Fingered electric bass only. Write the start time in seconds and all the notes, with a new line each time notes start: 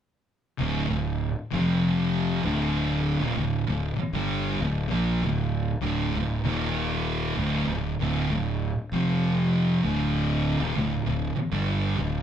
0.60 D1
0.90 D1
1.53 F1
2.44 D1
3.21 D#1
3.37 D1
3.67 D1
3.97 muted fingered electric bass stroke
4.13 G1
4.59 D1
4.89 A#1
5.22 D1
5.81 D1
6.14 D1
6.44 D#1
7.37 D1
7.67 D1
8.00 D1
8.30 D1
8.92 F1
9.85 D1
10.60 D#1
10.76 D1
11.06 D1
11.36 muted fingered electric bass stroke
11.52 G1
11.99 D1